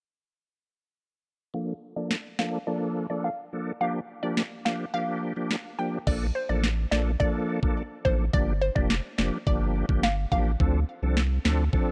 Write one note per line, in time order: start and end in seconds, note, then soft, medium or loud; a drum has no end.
1.54 1.74 F3 medium
1.54 1.74 A#3 medium
1.54 1.74 D4 medium
1.54 1.74 A4 medium
1.54 1.66 F5 loud
1.96 2.16 F3 medium
1.96 2.16 A#3 medium
1.96 2.16 D4 medium
1.96 2.16 A4 medium
1.96 2.08 D5 medium
2.11 snare loud
2.39 2.59 F3 medium
2.39 2.59 A#3 medium
2.39 2.59 D4 medium
2.39 2.59 A4 medium
2.39 2.51 F5 medium
2.39 snare loud
2.67 3.06 F3 medium
2.67 3.06 A#3 medium
2.67 3.06 D4 medium
2.67 3.07 A4 loud
2.67 2.79 D5 medium
3.10 3.29 F3 medium
3.10 3.30 A#3 medium
3.10 3.30 D4 medium
3.10 3.30 A4 medium
3.10 3.22 D5 medium
3.24 3.64 F5 medium
3.53 3.72 F3 medium
3.53 3.72 A#3 medium
3.53 3.72 D4 medium
3.53 3.72 A4 medium
3.81 4.00 F3 medium
3.81 4.00 A#3 medium
3.81 4.00 D4 medium
3.81 4.00 G4 medium
3.81 3.93 F5 loud
4.23 4.42 F3 medium
4.23 4.43 A#3 medium
4.23 4.43 D4 medium
4.23 4.43 G4 medium
4.23 4.35 D5 medium
4.37 snare loud
4.65 4.85 F3 medium
4.65 4.85 A#3 medium
4.65 4.85 D4 medium
4.65 4.85 G4 medium
4.65 4.77 F5 medium
4.65 snare loud
4.94 5.33 F3 medium
4.94 5.33 A#3 medium
4.94 5.33 D4 medium
4.94 5.33 G4 medium
4.94 5.34 F5 loud
5.36 5.56 F3 medium
5.36 5.56 A#3 medium
5.36 5.56 D4 medium
5.36 5.56 G4 medium
5.50 snare loud
5.78 5.98 F3 medium
5.78 5.98 A#3 medium
5.78 5.98 D4 medium
5.78 5.98 G4 medium
5.78 5.90 G5 medium
6.07 6.31 A#1 loud
6.07 6.26 F3 medium
6.07 6.27 A#3 medium
6.07 6.27 D4 medium
6.07 6.27 A4 loud
6.07 6.19 D5 loud
6.07 kick loud
6.07 crash medium
6.35 6.47 C5 medium
6.49 6.86 A1 medium
6.49 6.69 F3 medium
6.49 6.69 A#3 medium
6.49 6.69 D4 medium
6.49 6.69 A4 medium
6.49 6.61 D5 medium
6.64 snare loud
6.92 7.16 A#1 medium
6.92 7.11 F3 medium
6.92 7.12 A#3 medium
6.92 7.12 D4 medium
6.92 7.12 A4 medium
6.92 7.04 D5 medium
6.92 snare loud
7.20 7.59 F3 medium
7.20 7.59 A#3 medium
7.20 7.60 D4 medium
7.20 7.60 A4 loud
7.20 7.60 D5 loud
7.20 kick medium
7.63 7.82 F3 medium
7.63 7.82 A#3 medium
7.63 7.82 D4 medium
7.63 7.83 A4 medium
7.63 kick medium
8.05 8.30 A1 medium
8.05 8.25 F3 medium
8.05 8.25 A#3 medium
8.05 8.25 D4 medium
8.05 8.25 A4 medium
8.05 8.17 C5 medium
8.05 kick medium
8.33 8.70 G1 loud
8.33 8.53 F3 medium
8.33 8.53 A#3 medium
8.33 8.53 D4 medium
8.33 8.53 G4 loud
8.33 8.45 D5 loud
8.33 kick loud
8.62 8.73 C5 medium
8.76 9.00 F1 medium
8.76 8.95 F3 medium
8.76 8.96 A#3 medium
8.76 8.96 D4 medium
8.76 8.96 G4 medium
8.76 8.88 D5 medium
8.76 kick medium
8.90 snare loud
9.18 9.31 F1 medium
9.18 9.38 F3 medium
9.18 9.38 A#3 medium
9.18 9.38 D4 medium
9.18 9.38 G4 medium
9.18 9.30 D5 medium
9.18 snare loud
9.47 9.83 G1 loud
9.47 9.86 F3 medium
9.47 9.86 A#3 medium
9.47 9.86 D4 medium
9.47 9.86 G4 loud
9.47 9.87 D5 medium
9.47 kick loud
9.89 10.26 G1 medium
9.89 10.09 F3 medium
9.89 10.09 A#3 medium
9.89 10.09 D4 medium
9.89 10.09 G4 medium
9.89 kick medium
10.03 10.15 F5 medium
10.03 snare loud
10.32 10.56 A1 medium
10.32 10.51 F3 medium
10.32 10.51 A#3 medium
10.32 10.51 D4 medium
10.32 10.52 G4 medium
10.32 10.43 F5 medium
10.32 kick medium
10.60 10.84 D2 loud
10.60 10.80 F3 medium
10.60 10.80 C4 medium
10.60 10.80 D4 medium
10.60 10.80 A4 loud
10.60 kick loud
11.02 11.39 C2 medium
11.02 11.22 F3 medium
11.02 11.22 C4 medium
11.02 11.22 D4 medium
11.02 11.22 A4 medium
11.17 snare loud
11.45 11.69 D2 medium
11.45 11.64 F3 medium
11.45 11.64 C4 medium
11.45 11.64 D4 medium
11.45 11.65 A4 medium
11.45 snare loud
11.73 11.92 F3 medium
11.73 11.92 C4 medium
11.73 11.92 D4 medium
11.73 11.92 A4 loud
11.73 kick loud